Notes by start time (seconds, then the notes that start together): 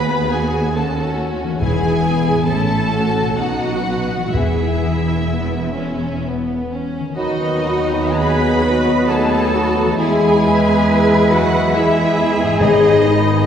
Already playing: D#2 D#3 A3 B3 F#4 G#4 B4 B5
0.32 F#4 G#4 G#5
0.74 C#4 F#4 A4 A5
1.43 E3
1.48 G#3
1.52 E4
1.57 E2 B4 G#5
1.61 E1 E2 B3 E4 G#4
2.30 A2
2.35 C#4
2.39 E4
2.44 A4 A5
2.48 A1 A2 C#4 E4 A4
2.93 F#4
3.21 B2
3.25 B3
3.30 D#4
3.35 B2 D#4 A4
3.39 B1 F#4 F#5
3.85 B3
4.16 E3
4.20 B3
4.25 E4
4.29 E2 G#4
4.33 E1 E2 B3 E4 G#4 E5
5.30 B3
5.78 C#4
6.24 B3
6.71 C#4
6.99 D#3
7.04 B3
7.08 F#4
7.13 F#3 D#4 F#4 B4 D#5
7.17 D#2 D#3 D#5 B5
7.41 B3 D#4
7.66 D#4 F#4
7.92 B3 D#4
8.16 B3 D#4 F#4 G#4 B4 B5
8.39 B3 D#4
8.61 D#4 F#4
8.85 B3 D#4
9.08 A3 D#4 F#4 G#4 A4 A5
9.30 B3 D#4
9.53 D#4 F#4
9.76 B3 D#4
9.82 E3
9.86 B3
9.91 G#4
9.95 B4
9.99 E2 G#3 E4 G#4 E5 G#5
10.22 B3 G#4
10.45 E4 B4
10.67 B3 G#4
10.89 E4
11.11 B3 G#4
11.32 F#3 E4 F#4 F#5
11.54 B3 G#4
11.75 E3 E4 G#4 E5
11.96 B3 G#4
12.17 E4
12.38 G#2 B3 G#4
12.47 B3
12.51 G#4
12.56 D#4 B4 D#5
12.60 G#1 G#2 D#3 D#4 D#5 B5
12.82 B3 G#4
13.06 D#4
13.30 B3 G#4